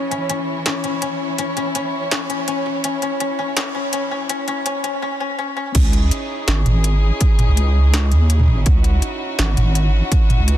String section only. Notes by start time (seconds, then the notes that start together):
Already playing: E3 C#4 E4 C#5
5.75 C#4 D#4 E4 G#4
8.66 F#4